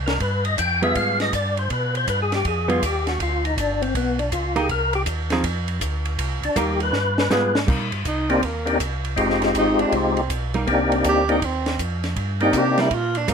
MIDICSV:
0, 0, Header, 1, 6, 480
1, 0, Start_track
1, 0, Tempo, 373832
1, 254, Time_signature, 4, 2, 24, 8
1, 17125, End_track
2, 0, Start_track
2, 0, Title_t, "Tonewheel organ"
2, 0, Program_c, 0, 16
2, 80, Note_on_c, 0, 70, 79
2, 246, Note_off_c, 0, 70, 0
2, 275, Note_on_c, 0, 71, 79
2, 568, Note_off_c, 0, 71, 0
2, 578, Note_on_c, 0, 75, 83
2, 736, Note_off_c, 0, 75, 0
2, 755, Note_on_c, 0, 79, 85
2, 1049, Note_off_c, 0, 79, 0
2, 1069, Note_on_c, 0, 76, 79
2, 1222, Note_off_c, 0, 76, 0
2, 1242, Note_on_c, 0, 77, 92
2, 1533, Note_off_c, 0, 77, 0
2, 1558, Note_on_c, 0, 75, 80
2, 1707, Note_off_c, 0, 75, 0
2, 1731, Note_on_c, 0, 74, 74
2, 2018, Note_off_c, 0, 74, 0
2, 2038, Note_on_c, 0, 72, 81
2, 2187, Note_off_c, 0, 72, 0
2, 2216, Note_on_c, 0, 71, 69
2, 2501, Note_off_c, 0, 71, 0
2, 2531, Note_on_c, 0, 72, 93
2, 2675, Note_off_c, 0, 72, 0
2, 2692, Note_on_c, 0, 71, 73
2, 2831, Note_off_c, 0, 71, 0
2, 2854, Note_on_c, 0, 68, 65
2, 2993, Note_off_c, 0, 68, 0
2, 3021, Note_on_c, 0, 67, 71
2, 3157, Note_off_c, 0, 67, 0
2, 3178, Note_on_c, 0, 68, 75
2, 3463, Note_off_c, 0, 68, 0
2, 3489, Note_on_c, 0, 65, 84
2, 3634, Note_off_c, 0, 65, 0
2, 3663, Note_on_c, 0, 67, 82
2, 3946, Note_off_c, 0, 67, 0
2, 3960, Note_on_c, 0, 66, 79
2, 4110, Note_off_c, 0, 66, 0
2, 4139, Note_on_c, 0, 65, 70
2, 4424, Note_off_c, 0, 65, 0
2, 4431, Note_on_c, 0, 63, 73
2, 4585, Note_off_c, 0, 63, 0
2, 4618, Note_on_c, 0, 62, 65
2, 4903, Note_off_c, 0, 62, 0
2, 4905, Note_on_c, 0, 60, 72
2, 5063, Note_off_c, 0, 60, 0
2, 5094, Note_on_c, 0, 59, 76
2, 5379, Note_on_c, 0, 62, 78
2, 5381, Note_off_c, 0, 59, 0
2, 5539, Note_off_c, 0, 62, 0
2, 5547, Note_on_c, 0, 65, 69
2, 5847, Note_off_c, 0, 65, 0
2, 5883, Note_on_c, 0, 68, 81
2, 6032, Note_off_c, 0, 68, 0
2, 6050, Note_on_c, 0, 70, 88
2, 6339, Note_off_c, 0, 70, 0
2, 6358, Note_on_c, 0, 67, 89
2, 6452, Note_off_c, 0, 67, 0
2, 8277, Note_on_c, 0, 62, 81
2, 8429, Note_off_c, 0, 62, 0
2, 8442, Note_on_c, 0, 67, 75
2, 8735, Note_off_c, 0, 67, 0
2, 8766, Note_on_c, 0, 71, 83
2, 9742, Note_off_c, 0, 71, 0
2, 10650, Note_on_c, 0, 58, 70
2, 10653, Note_on_c, 0, 62, 65
2, 10654, Note_on_c, 0, 60, 60
2, 10657, Note_on_c, 0, 63, 65
2, 10658, Note_on_c, 0, 67, 77
2, 10803, Note_off_c, 0, 58, 0
2, 10804, Note_off_c, 0, 62, 0
2, 10805, Note_off_c, 0, 60, 0
2, 10806, Note_off_c, 0, 63, 0
2, 10807, Note_off_c, 0, 67, 0
2, 11111, Note_on_c, 0, 58, 52
2, 11121, Note_on_c, 0, 60, 48
2, 11123, Note_on_c, 0, 63, 51
2, 11124, Note_on_c, 0, 62, 46
2, 11130, Note_on_c, 0, 67, 59
2, 11273, Note_off_c, 0, 58, 0
2, 11278, Note_off_c, 0, 60, 0
2, 11279, Note_off_c, 0, 63, 0
2, 11280, Note_off_c, 0, 62, 0
2, 11283, Note_off_c, 0, 67, 0
2, 11762, Note_on_c, 0, 56, 60
2, 11768, Note_on_c, 0, 60, 56
2, 11768, Note_on_c, 0, 63, 52
2, 11771, Note_on_c, 0, 65, 54
2, 11773, Note_on_c, 0, 67, 65
2, 13110, Note_off_c, 0, 56, 0
2, 13113, Note_off_c, 0, 60, 0
2, 13113, Note_off_c, 0, 63, 0
2, 13114, Note_off_c, 0, 65, 0
2, 13115, Note_off_c, 0, 67, 0
2, 13697, Note_on_c, 0, 58, 67
2, 13699, Note_on_c, 0, 60, 60
2, 13701, Note_on_c, 0, 62, 59
2, 13703, Note_on_c, 0, 67, 72
2, 13708, Note_on_c, 0, 63, 61
2, 14427, Note_off_c, 0, 58, 0
2, 14428, Note_off_c, 0, 60, 0
2, 14429, Note_off_c, 0, 62, 0
2, 14430, Note_off_c, 0, 67, 0
2, 14433, Note_off_c, 0, 63, 0
2, 14489, Note_on_c, 0, 58, 68
2, 14493, Note_on_c, 0, 62, 64
2, 14494, Note_on_c, 0, 60, 62
2, 14495, Note_on_c, 0, 63, 56
2, 14497, Note_on_c, 0, 67, 72
2, 14640, Note_off_c, 0, 58, 0
2, 14643, Note_off_c, 0, 60, 0
2, 14643, Note_off_c, 0, 62, 0
2, 14643, Note_off_c, 0, 63, 0
2, 14645, Note_off_c, 0, 67, 0
2, 15927, Note_on_c, 0, 58, 66
2, 15936, Note_on_c, 0, 60, 61
2, 15936, Note_on_c, 0, 62, 60
2, 15937, Note_on_c, 0, 63, 58
2, 15943, Note_on_c, 0, 67, 70
2, 16541, Note_off_c, 0, 58, 0
2, 16545, Note_off_c, 0, 60, 0
2, 16545, Note_off_c, 0, 62, 0
2, 16546, Note_off_c, 0, 63, 0
2, 16549, Note_off_c, 0, 67, 0
2, 17125, End_track
3, 0, Start_track
3, 0, Title_t, "Tenor saxophone"
3, 0, Program_c, 1, 66
3, 10368, Note_on_c, 1, 63, 73
3, 10664, Note_on_c, 1, 60, 66
3, 10683, Note_off_c, 1, 63, 0
3, 10848, Note_on_c, 1, 58, 64
3, 10868, Note_off_c, 1, 60, 0
3, 11315, Note_off_c, 1, 58, 0
3, 12303, Note_on_c, 1, 63, 80
3, 12592, Note_on_c, 1, 62, 72
3, 12611, Note_off_c, 1, 63, 0
3, 12783, Note_on_c, 1, 60, 69
3, 12802, Note_off_c, 1, 62, 0
3, 13241, Note_off_c, 1, 60, 0
3, 14234, Note_on_c, 1, 67, 90
3, 14498, Note_off_c, 1, 67, 0
3, 14526, Note_on_c, 1, 63, 74
3, 14703, Note_on_c, 1, 60, 69
3, 14722, Note_off_c, 1, 63, 0
3, 15160, Note_off_c, 1, 60, 0
3, 15945, Note_on_c, 1, 63, 81
3, 16146, Note_on_c, 1, 67, 83
3, 16166, Note_off_c, 1, 63, 0
3, 16435, Note_on_c, 1, 64, 77
3, 16454, Note_off_c, 1, 67, 0
3, 16625, Note_on_c, 1, 65, 81
3, 16644, Note_off_c, 1, 64, 0
3, 16918, Note_on_c, 1, 62, 79
3, 16937, Note_off_c, 1, 65, 0
3, 17114, Note_off_c, 1, 62, 0
3, 17125, End_track
4, 0, Start_track
4, 0, Title_t, "Hollow-body jazz guitar"
4, 0, Program_c, 2, 26
4, 1055, Note_on_c, 2, 55, 57
4, 1056, Note_on_c, 2, 59, 56
4, 1061, Note_on_c, 2, 65, 60
4, 1069, Note_on_c, 2, 68, 66
4, 1667, Note_off_c, 2, 55, 0
4, 1668, Note_off_c, 2, 59, 0
4, 1670, Note_off_c, 2, 65, 0
4, 1674, Note_off_c, 2, 68, 0
4, 3445, Note_on_c, 2, 59, 63
4, 3447, Note_on_c, 2, 55, 59
4, 3453, Note_on_c, 2, 65, 59
4, 3462, Note_on_c, 2, 68, 65
4, 3600, Note_off_c, 2, 59, 0
4, 3601, Note_off_c, 2, 55, 0
4, 3604, Note_off_c, 2, 65, 0
4, 3609, Note_off_c, 2, 68, 0
4, 5853, Note_on_c, 2, 58, 67
4, 5853, Note_on_c, 2, 63, 76
4, 5862, Note_on_c, 2, 67, 75
4, 6005, Note_off_c, 2, 58, 0
4, 6005, Note_off_c, 2, 63, 0
4, 6010, Note_off_c, 2, 67, 0
4, 6832, Note_on_c, 2, 53, 58
4, 6835, Note_on_c, 2, 60, 62
4, 6838, Note_on_c, 2, 68, 63
4, 6839, Note_on_c, 2, 63, 54
4, 6974, Note_off_c, 2, 53, 0
4, 6976, Note_off_c, 2, 60, 0
4, 6977, Note_off_c, 2, 68, 0
4, 6978, Note_off_c, 2, 63, 0
4, 8421, Note_on_c, 2, 55, 64
4, 8426, Note_on_c, 2, 58, 73
4, 8435, Note_on_c, 2, 63, 72
4, 8901, Note_off_c, 2, 55, 0
4, 8904, Note_off_c, 2, 58, 0
4, 8908, Note_off_c, 2, 63, 0
4, 9378, Note_on_c, 2, 55, 64
4, 9389, Note_on_c, 2, 59, 61
4, 9392, Note_on_c, 2, 65, 60
4, 9398, Note_on_c, 2, 68, 66
4, 9661, Note_off_c, 2, 55, 0
4, 9666, Note_off_c, 2, 59, 0
4, 9667, Note_off_c, 2, 65, 0
4, 9670, Note_off_c, 2, 68, 0
4, 9846, Note_on_c, 2, 55, 47
4, 9860, Note_on_c, 2, 58, 46
4, 9867, Note_on_c, 2, 63, 48
4, 10134, Note_off_c, 2, 55, 0
4, 10141, Note_off_c, 2, 58, 0
4, 10145, Note_off_c, 2, 63, 0
4, 13539, Note_on_c, 2, 55, 51
4, 13546, Note_on_c, 2, 58, 58
4, 13549, Note_on_c, 2, 63, 58
4, 13686, Note_off_c, 2, 55, 0
4, 13690, Note_off_c, 2, 58, 0
4, 13691, Note_off_c, 2, 63, 0
4, 16410, Note_on_c, 2, 55, 59
4, 16416, Note_on_c, 2, 58, 59
4, 16419, Note_on_c, 2, 63, 58
4, 16559, Note_off_c, 2, 55, 0
4, 16563, Note_off_c, 2, 58, 0
4, 16564, Note_off_c, 2, 63, 0
4, 17051, Note_on_c, 2, 55, 57
4, 17060, Note_on_c, 2, 63, 57
4, 17061, Note_on_c, 2, 58, 62
4, 17125, Note_off_c, 2, 55, 0
4, 17125, Note_off_c, 2, 58, 0
4, 17125, Note_off_c, 2, 63, 0
4, 17125, End_track
5, 0, Start_track
5, 0, Title_t, "Tonewheel organ"
5, 0, Program_c, 3, 16
5, 0, Note_on_c, 3, 36, 82
5, 243, Note_off_c, 3, 36, 0
5, 262, Note_on_c, 3, 43, 87
5, 725, Note_off_c, 3, 43, 0
5, 742, Note_on_c, 3, 41, 72
5, 1205, Note_off_c, 3, 41, 0
5, 1221, Note_on_c, 3, 44, 64
5, 1685, Note_off_c, 3, 44, 0
5, 1705, Note_on_c, 3, 43, 71
5, 2168, Note_off_c, 3, 43, 0
5, 2183, Note_on_c, 3, 47, 82
5, 2647, Note_off_c, 3, 47, 0
5, 2663, Note_on_c, 3, 43, 79
5, 3128, Note_off_c, 3, 43, 0
5, 3141, Note_on_c, 3, 41, 67
5, 3607, Note_off_c, 3, 41, 0
5, 3623, Note_on_c, 3, 39, 83
5, 4088, Note_off_c, 3, 39, 0
5, 4104, Note_on_c, 3, 38, 87
5, 4569, Note_off_c, 3, 38, 0
5, 4588, Note_on_c, 3, 31, 87
5, 5051, Note_off_c, 3, 31, 0
5, 5065, Note_on_c, 3, 35, 70
5, 5529, Note_off_c, 3, 35, 0
5, 5547, Note_on_c, 3, 37, 80
5, 6011, Note_off_c, 3, 37, 0
5, 6024, Note_on_c, 3, 36, 86
5, 6489, Note_off_c, 3, 36, 0
5, 6501, Note_on_c, 3, 39, 83
5, 6967, Note_off_c, 3, 39, 0
5, 6981, Note_on_c, 3, 41, 72
5, 7447, Note_off_c, 3, 41, 0
5, 7462, Note_on_c, 3, 38, 89
5, 7928, Note_off_c, 3, 38, 0
5, 7941, Note_on_c, 3, 36, 90
5, 8230, Note_off_c, 3, 36, 0
5, 8246, Note_on_c, 3, 36, 42
5, 8332, Note_off_c, 3, 36, 0
5, 8419, Note_on_c, 3, 39, 78
5, 8886, Note_off_c, 3, 39, 0
5, 8888, Note_on_c, 3, 43, 76
5, 9360, Note_off_c, 3, 43, 0
5, 9372, Note_on_c, 3, 44, 80
5, 9842, Note_off_c, 3, 44, 0
5, 9858, Note_on_c, 3, 48, 75
5, 10015, Note_off_c, 3, 48, 0
5, 10017, Note_on_c, 3, 46, 48
5, 10171, Note_on_c, 3, 43, 53
5, 10179, Note_off_c, 3, 46, 0
5, 10325, Note_off_c, 3, 43, 0
5, 10339, Note_on_c, 3, 36, 79
5, 10806, Note_off_c, 3, 36, 0
5, 10819, Note_on_c, 3, 39, 64
5, 11285, Note_off_c, 3, 39, 0
5, 11299, Note_on_c, 3, 36, 79
5, 11765, Note_off_c, 3, 36, 0
5, 11777, Note_on_c, 3, 29, 78
5, 12244, Note_off_c, 3, 29, 0
5, 12257, Note_on_c, 3, 32, 82
5, 12545, Note_off_c, 3, 32, 0
5, 12561, Note_on_c, 3, 32, 37
5, 12648, Note_off_c, 3, 32, 0
5, 12739, Note_on_c, 3, 36, 66
5, 13205, Note_off_c, 3, 36, 0
5, 13223, Note_on_c, 3, 35, 84
5, 13687, Note_off_c, 3, 35, 0
5, 13700, Note_on_c, 3, 36, 81
5, 14165, Note_off_c, 3, 36, 0
5, 14182, Note_on_c, 3, 38, 79
5, 14645, Note_off_c, 3, 38, 0
5, 14663, Note_on_c, 3, 39, 73
5, 15125, Note_off_c, 3, 39, 0
5, 15140, Note_on_c, 3, 41, 81
5, 15604, Note_off_c, 3, 41, 0
5, 15612, Note_on_c, 3, 43, 83
5, 16079, Note_off_c, 3, 43, 0
5, 16091, Note_on_c, 3, 48, 73
5, 16558, Note_off_c, 3, 48, 0
5, 16572, Note_on_c, 3, 46, 73
5, 17038, Note_off_c, 3, 46, 0
5, 17049, Note_on_c, 3, 43, 75
5, 17125, Note_off_c, 3, 43, 0
5, 17125, End_track
6, 0, Start_track
6, 0, Title_t, "Drums"
6, 95, Note_on_c, 9, 51, 44
6, 98, Note_on_c, 9, 38, 56
6, 224, Note_off_c, 9, 51, 0
6, 226, Note_off_c, 9, 38, 0
6, 259, Note_on_c, 9, 51, 54
6, 264, Note_on_c, 9, 36, 20
6, 388, Note_off_c, 9, 51, 0
6, 393, Note_off_c, 9, 36, 0
6, 573, Note_on_c, 9, 51, 44
6, 701, Note_off_c, 9, 51, 0
6, 743, Note_on_c, 9, 44, 58
6, 743, Note_on_c, 9, 51, 61
6, 745, Note_on_c, 9, 36, 19
6, 872, Note_off_c, 9, 44, 0
6, 872, Note_off_c, 9, 51, 0
6, 874, Note_off_c, 9, 36, 0
6, 1058, Note_on_c, 9, 51, 43
6, 1187, Note_off_c, 9, 51, 0
6, 1224, Note_on_c, 9, 51, 59
6, 1226, Note_on_c, 9, 36, 24
6, 1352, Note_off_c, 9, 51, 0
6, 1354, Note_off_c, 9, 36, 0
6, 1538, Note_on_c, 9, 51, 43
6, 1541, Note_on_c, 9, 38, 41
6, 1667, Note_off_c, 9, 51, 0
6, 1669, Note_off_c, 9, 38, 0
6, 1707, Note_on_c, 9, 36, 22
6, 1707, Note_on_c, 9, 44, 51
6, 1707, Note_on_c, 9, 51, 65
6, 1835, Note_off_c, 9, 36, 0
6, 1835, Note_off_c, 9, 44, 0
6, 1835, Note_off_c, 9, 51, 0
6, 2018, Note_on_c, 9, 51, 41
6, 2147, Note_off_c, 9, 51, 0
6, 2184, Note_on_c, 9, 51, 55
6, 2186, Note_on_c, 9, 36, 18
6, 2312, Note_off_c, 9, 51, 0
6, 2314, Note_off_c, 9, 36, 0
6, 2502, Note_on_c, 9, 51, 42
6, 2630, Note_off_c, 9, 51, 0
6, 2665, Note_on_c, 9, 44, 49
6, 2665, Note_on_c, 9, 51, 60
6, 2666, Note_on_c, 9, 36, 17
6, 2794, Note_off_c, 9, 36, 0
6, 2794, Note_off_c, 9, 44, 0
6, 2794, Note_off_c, 9, 51, 0
6, 2979, Note_on_c, 9, 51, 44
6, 2982, Note_on_c, 9, 38, 41
6, 3108, Note_off_c, 9, 51, 0
6, 3110, Note_off_c, 9, 38, 0
6, 3144, Note_on_c, 9, 51, 58
6, 3146, Note_on_c, 9, 36, 24
6, 3272, Note_off_c, 9, 51, 0
6, 3274, Note_off_c, 9, 36, 0
6, 3460, Note_on_c, 9, 51, 44
6, 3588, Note_off_c, 9, 51, 0
6, 3627, Note_on_c, 9, 36, 20
6, 3629, Note_on_c, 9, 44, 48
6, 3629, Note_on_c, 9, 51, 70
6, 3755, Note_off_c, 9, 36, 0
6, 3757, Note_off_c, 9, 44, 0
6, 3757, Note_off_c, 9, 51, 0
6, 3939, Note_on_c, 9, 51, 41
6, 3942, Note_on_c, 9, 38, 36
6, 4068, Note_off_c, 9, 51, 0
6, 4070, Note_off_c, 9, 38, 0
6, 4108, Note_on_c, 9, 36, 19
6, 4109, Note_on_c, 9, 51, 65
6, 4236, Note_off_c, 9, 36, 0
6, 4237, Note_off_c, 9, 51, 0
6, 4428, Note_on_c, 9, 51, 43
6, 4556, Note_off_c, 9, 51, 0
6, 4589, Note_on_c, 9, 36, 21
6, 4593, Note_on_c, 9, 44, 53
6, 4593, Note_on_c, 9, 51, 61
6, 4718, Note_off_c, 9, 36, 0
6, 4721, Note_off_c, 9, 44, 0
6, 4721, Note_off_c, 9, 51, 0
6, 4909, Note_on_c, 9, 51, 42
6, 5038, Note_off_c, 9, 51, 0
6, 5069, Note_on_c, 9, 36, 20
6, 5073, Note_on_c, 9, 51, 62
6, 5198, Note_off_c, 9, 36, 0
6, 5201, Note_off_c, 9, 51, 0
6, 5380, Note_on_c, 9, 51, 44
6, 5509, Note_off_c, 9, 51, 0
6, 5546, Note_on_c, 9, 44, 57
6, 5546, Note_on_c, 9, 51, 57
6, 5548, Note_on_c, 9, 36, 19
6, 5674, Note_off_c, 9, 44, 0
6, 5674, Note_off_c, 9, 51, 0
6, 5676, Note_off_c, 9, 36, 0
6, 5854, Note_on_c, 9, 51, 45
6, 5982, Note_off_c, 9, 51, 0
6, 6026, Note_on_c, 9, 36, 22
6, 6026, Note_on_c, 9, 51, 55
6, 6154, Note_off_c, 9, 36, 0
6, 6154, Note_off_c, 9, 51, 0
6, 6330, Note_on_c, 9, 51, 44
6, 6458, Note_off_c, 9, 51, 0
6, 6497, Note_on_c, 9, 44, 48
6, 6497, Note_on_c, 9, 51, 61
6, 6503, Note_on_c, 9, 36, 17
6, 6625, Note_off_c, 9, 44, 0
6, 6625, Note_off_c, 9, 51, 0
6, 6632, Note_off_c, 9, 36, 0
6, 6807, Note_on_c, 9, 51, 47
6, 6810, Note_on_c, 9, 38, 39
6, 6936, Note_off_c, 9, 51, 0
6, 6938, Note_off_c, 9, 38, 0
6, 6982, Note_on_c, 9, 51, 65
6, 6983, Note_on_c, 9, 36, 21
6, 7110, Note_off_c, 9, 51, 0
6, 7112, Note_off_c, 9, 36, 0
6, 7290, Note_on_c, 9, 51, 44
6, 7418, Note_off_c, 9, 51, 0
6, 7462, Note_on_c, 9, 44, 55
6, 7462, Note_on_c, 9, 51, 57
6, 7464, Note_on_c, 9, 36, 24
6, 7590, Note_off_c, 9, 44, 0
6, 7590, Note_off_c, 9, 51, 0
6, 7592, Note_off_c, 9, 36, 0
6, 7773, Note_on_c, 9, 51, 45
6, 7902, Note_off_c, 9, 51, 0
6, 7944, Note_on_c, 9, 36, 18
6, 7944, Note_on_c, 9, 51, 67
6, 8072, Note_off_c, 9, 51, 0
6, 8073, Note_off_c, 9, 36, 0
6, 8260, Note_on_c, 9, 51, 48
6, 8388, Note_off_c, 9, 51, 0
6, 8424, Note_on_c, 9, 36, 21
6, 8424, Note_on_c, 9, 44, 53
6, 8424, Note_on_c, 9, 51, 61
6, 8552, Note_off_c, 9, 36, 0
6, 8552, Note_off_c, 9, 44, 0
6, 8552, Note_off_c, 9, 51, 0
6, 8734, Note_on_c, 9, 51, 42
6, 8863, Note_off_c, 9, 51, 0
6, 8897, Note_on_c, 9, 38, 47
6, 9025, Note_off_c, 9, 38, 0
6, 9221, Note_on_c, 9, 38, 74
6, 9349, Note_off_c, 9, 38, 0
6, 9379, Note_on_c, 9, 44, 55
6, 9381, Note_on_c, 9, 38, 62
6, 9507, Note_off_c, 9, 44, 0
6, 9510, Note_off_c, 9, 38, 0
6, 9697, Note_on_c, 9, 38, 82
6, 9825, Note_off_c, 9, 38, 0
6, 9861, Note_on_c, 9, 36, 69
6, 9861, Note_on_c, 9, 49, 68
6, 9989, Note_off_c, 9, 36, 0
6, 9989, Note_off_c, 9, 49, 0
6, 10170, Note_on_c, 9, 51, 41
6, 10298, Note_off_c, 9, 51, 0
6, 10339, Note_on_c, 9, 44, 46
6, 10339, Note_on_c, 9, 51, 57
6, 10341, Note_on_c, 9, 36, 21
6, 10468, Note_off_c, 9, 44, 0
6, 10468, Note_off_c, 9, 51, 0
6, 10469, Note_off_c, 9, 36, 0
6, 10652, Note_on_c, 9, 51, 42
6, 10780, Note_off_c, 9, 51, 0
6, 10819, Note_on_c, 9, 36, 22
6, 10819, Note_on_c, 9, 51, 57
6, 10948, Note_off_c, 9, 36, 0
6, 10948, Note_off_c, 9, 51, 0
6, 11131, Note_on_c, 9, 51, 42
6, 11260, Note_off_c, 9, 51, 0
6, 11300, Note_on_c, 9, 44, 58
6, 11300, Note_on_c, 9, 51, 64
6, 11301, Note_on_c, 9, 36, 17
6, 11428, Note_off_c, 9, 44, 0
6, 11428, Note_off_c, 9, 51, 0
6, 11429, Note_off_c, 9, 36, 0
6, 11614, Note_on_c, 9, 51, 43
6, 11743, Note_off_c, 9, 51, 0
6, 11780, Note_on_c, 9, 36, 23
6, 11780, Note_on_c, 9, 51, 59
6, 11908, Note_off_c, 9, 51, 0
6, 11909, Note_off_c, 9, 36, 0
6, 11941, Note_on_c, 9, 38, 30
6, 12069, Note_off_c, 9, 38, 0
6, 12092, Note_on_c, 9, 51, 43
6, 12101, Note_on_c, 9, 38, 40
6, 12220, Note_off_c, 9, 51, 0
6, 12229, Note_off_c, 9, 38, 0
6, 12259, Note_on_c, 9, 44, 54
6, 12259, Note_on_c, 9, 51, 57
6, 12261, Note_on_c, 9, 36, 17
6, 12388, Note_off_c, 9, 44, 0
6, 12388, Note_off_c, 9, 51, 0
6, 12390, Note_off_c, 9, 36, 0
6, 12571, Note_on_c, 9, 51, 41
6, 12699, Note_off_c, 9, 51, 0
6, 12742, Note_on_c, 9, 36, 22
6, 12742, Note_on_c, 9, 51, 54
6, 12870, Note_off_c, 9, 51, 0
6, 12871, Note_off_c, 9, 36, 0
6, 13054, Note_on_c, 9, 51, 40
6, 13182, Note_off_c, 9, 51, 0
6, 13223, Note_on_c, 9, 36, 23
6, 13223, Note_on_c, 9, 44, 52
6, 13223, Note_on_c, 9, 51, 63
6, 13351, Note_off_c, 9, 44, 0
6, 13351, Note_off_c, 9, 51, 0
6, 13352, Note_off_c, 9, 36, 0
6, 13533, Note_on_c, 9, 51, 43
6, 13661, Note_off_c, 9, 51, 0
6, 13705, Note_on_c, 9, 36, 20
6, 13705, Note_on_c, 9, 51, 49
6, 13833, Note_off_c, 9, 51, 0
6, 13834, Note_off_c, 9, 36, 0
6, 14018, Note_on_c, 9, 51, 43
6, 14147, Note_off_c, 9, 51, 0
6, 14179, Note_on_c, 9, 44, 57
6, 14179, Note_on_c, 9, 51, 62
6, 14182, Note_on_c, 9, 36, 16
6, 14308, Note_off_c, 9, 44, 0
6, 14308, Note_off_c, 9, 51, 0
6, 14311, Note_off_c, 9, 36, 0
6, 14493, Note_on_c, 9, 51, 41
6, 14622, Note_off_c, 9, 51, 0
6, 14662, Note_on_c, 9, 36, 23
6, 14664, Note_on_c, 9, 51, 61
6, 14791, Note_off_c, 9, 36, 0
6, 14793, Note_off_c, 9, 51, 0
6, 14972, Note_on_c, 9, 51, 42
6, 14975, Note_on_c, 9, 38, 53
6, 15101, Note_off_c, 9, 51, 0
6, 15103, Note_off_c, 9, 38, 0
6, 15140, Note_on_c, 9, 36, 19
6, 15141, Note_on_c, 9, 44, 49
6, 15141, Note_on_c, 9, 51, 60
6, 15269, Note_off_c, 9, 36, 0
6, 15269, Note_off_c, 9, 44, 0
6, 15269, Note_off_c, 9, 51, 0
6, 15454, Note_on_c, 9, 51, 45
6, 15456, Note_on_c, 9, 38, 35
6, 15582, Note_off_c, 9, 51, 0
6, 15585, Note_off_c, 9, 38, 0
6, 15617, Note_on_c, 9, 36, 21
6, 15618, Note_on_c, 9, 51, 56
6, 15745, Note_off_c, 9, 36, 0
6, 15747, Note_off_c, 9, 51, 0
6, 15927, Note_on_c, 9, 51, 38
6, 16055, Note_off_c, 9, 51, 0
6, 16089, Note_on_c, 9, 44, 50
6, 16089, Note_on_c, 9, 51, 61
6, 16095, Note_on_c, 9, 36, 22
6, 16218, Note_off_c, 9, 44, 0
6, 16218, Note_off_c, 9, 51, 0
6, 16223, Note_off_c, 9, 36, 0
6, 16404, Note_on_c, 9, 51, 46
6, 16407, Note_on_c, 9, 38, 45
6, 16532, Note_off_c, 9, 51, 0
6, 16535, Note_off_c, 9, 38, 0
6, 16573, Note_on_c, 9, 51, 57
6, 16574, Note_on_c, 9, 36, 21
6, 16702, Note_off_c, 9, 36, 0
6, 16702, Note_off_c, 9, 51, 0
6, 16882, Note_on_c, 9, 51, 43
6, 17010, Note_off_c, 9, 51, 0
6, 17052, Note_on_c, 9, 44, 49
6, 17052, Note_on_c, 9, 51, 64
6, 17053, Note_on_c, 9, 36, 17
6, 17125, Note_off_c, 9, 36, 0
6, 17125, Note_off_c, 9, 44, 0
6, 17125, Note_off_c, 9, 51, 0
6, 17125, End_track
0, 0, End_of_file